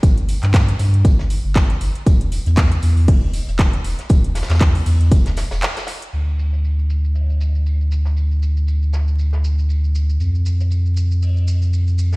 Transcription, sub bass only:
X:1
M:4/4
L:1/16
Q:"Swing 16ths" 1/4=118
K:Dm
V:1 name="Sub bass" clef=bass
G,,,2 z G,,2 z G,,2 G,,,2 z G,,,2 z G,,, z | E,,,2 z E,,2 z E,,2 E,,,2 z E,,,2 z E,,, z | E,,,2 z E,,2 z E,,2 E,,,2 z E,,, z4 | D,,16- |
D,,16 | F,,16 |]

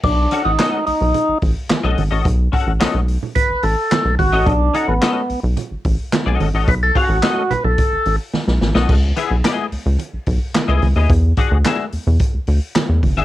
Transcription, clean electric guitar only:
X:1
M:4/4
L:1/16
Q:1/4=109
K:Bmix
V:1 name="Clean electric guitar"
z2 [CFAf] z [CFAd] z8 [CFAd] z [CFAd] | z2 [CFAf] z [CFAd] z8 z2 [CFAd] | z2 [CFAf] z [CFAd] z8 [CFAd] z [CFAd] | z2 [CFAf] z [CFAd] z8 z2 [CFAd] |
z2 [B,EGe] z [B,EGd] z8 [B,EGd] z [B,EGd] | z2 [=DFGf] z [DFGe] z8 z2 [DFGe] |]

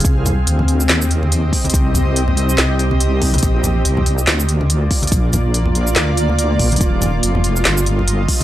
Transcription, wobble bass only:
X:1
M:4/4
L:1/8
Q:"Swing 16ths" 1/4=142
K:Cm
V:1 name="Wobble bass" clef=bass
C,,2 D,,2 E,,3 z | C,,4 C,,4 | B,,,2 C,,2 D,,3 z | B,,,4 D,,3 B,,, |
E,,,2 F,,,2 G,,,3 z |]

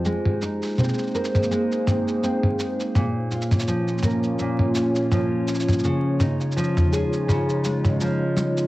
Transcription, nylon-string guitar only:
X:1
M:4/4
L:1/8
Q:"Swing 16ths" 1/4=83
K:Ab
V:1 name="Nylon-string guitar" clef=bass
A, E C B A, C C2 | B,, F F, B B,, D F,2 | D, E F, A D, A, F,2 |]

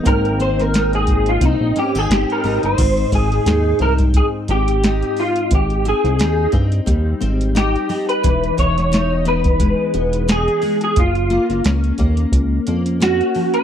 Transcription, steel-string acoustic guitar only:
X:1
M:4/4
L:1/16
Q:"Swing 16ths" 1/4=88
K:Ab
V:1 name="Steel-string acoustic guitar"
A,,2 C2 E4 C2 D E C2 E2 | A,,2 C2 E2 C4 C2 E4- | E2 C2 E2 C2 G,2 C2 E2 G,2 | =E,2 =B,2 ^D2 B,2 ^G,2 B,2 D2 G,2 |
z2 B,2 D2 B,4 B,2 D2 F,2 |]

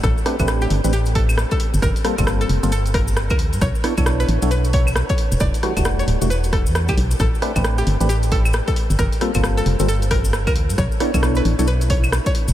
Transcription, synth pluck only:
X:1
M:4/4
L:1/16
Q:"Swing 16ths" 1/4=134
K:Bphr
V:1 name="Synth pluck"
A z4 G2 z G z A2 z A2 z | _B z4 A2 z A z B2 z B2 z | ^c z4 B2 z B z c2 z c2 z | d z4 ^c2 z B z A2 z G2 z |
A z4 G2 z G z A2 z A2 z | _B z4 A2 z A z B2 z B2 z | ^c z4 B2 z B z c2 z c2 z |]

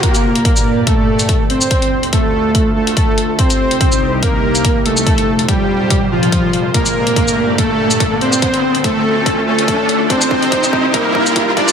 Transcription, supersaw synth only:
X:1
M:4/4
L:1/8
Q:"Swing 16ths" 1/4=143
K:Gm
V:1 name="Supersaw synth"
[B,B]4 [A,A]3 [Cc]- | [Cc]2 [A,A]3 [A,A]3 | [Cc]4 [B,B]3 [A,A]- | [A,A]2 [G,G]3 [F,F]3 |
[B,B]4 [A,A]3 [Cc]- | [Cc]2 [A,A]3 [A,A]3 | [Cc]4 [B,B]3 [Dd] |]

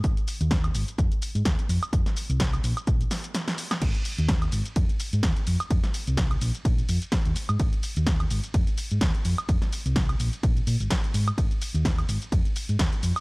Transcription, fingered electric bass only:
X:1
M:4/4
L:1/16
Q:"Swing 16ths" 1/4=127
K:Ab
V:1 name="Fingered electric bass" clef=bass
A,,, z2 E,,2 z A,,, z F,, z2 A,, E,, z F,, z | F,, z2 C,,2 z B,,, z B,,, z6 z | A,,, z2 E,,2 z A,,, z F,, z2 A,, E,, z F,, z | F,, z2 C,,2 z B,,, z B,,, z F,, z2 E,, z A,, |
A,,, z2 E,,2 z A,,, z F,, z2 A,, E,, z F,, z | F,, z2 C,,2 z B,,, z B,,, z B,, A,,, z2 A,, z | A,,, z2 E,,2 z A,,, z F,, z2 A,, E,, z F,, z |]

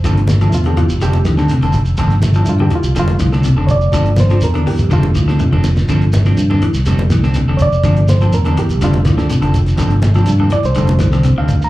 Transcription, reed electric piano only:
X:1
M:4/4
L:1/16
Q:1/4=123
K:Flyd
V:1 name="Reed electric piano"
c2 z2 [EF] G F2 G2 z6 | z4 [EF] G F2 F2 z4 [^cd]2- | [^cd]2 =c2 _B2 G2 F8- | F4 z8 z2 [^cd]2- |
[^cd]2 =c2 _B2 G2 [DF]8- | [DF]4 z2 d c6 f2 _b |]
V:2 name="Reed electric piano" clef=bass
[C,A,F]8 [D,G,A,]6 z2 | [C,F,A,]2 z6 [D,G,A,]8 | [C,F,A,]2 z6 [D,G,A,]8 | [C,F,A,]8 [D,G,A,]6 z2 |
[C,F,A,]6 z2 [D,G,A,]2 z6 | [C,F,A,]6 z2 [D,G,A,]2 z6 |]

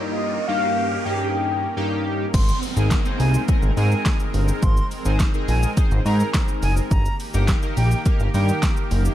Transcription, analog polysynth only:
X:1
M:4/4
L:1/16
Q:1/4=105
K:Ab
V:1 name="Analog polysynth"
[G,,B,EG]2 z [G,,B,EG]3 z [G,,B,EG]4 z [G,,B,EG]3 z | z3 [CEAB]2 [CEAc]3 [CEAB]2 [CEAB]6- | [CEAB] z2 [CEAc]2 [CEAB]3 [CEAc]2 [CEAB]6 | z3 [B,EGB]2 [B,EGB]3 [B,EGB]2 [B,EGB]6 |]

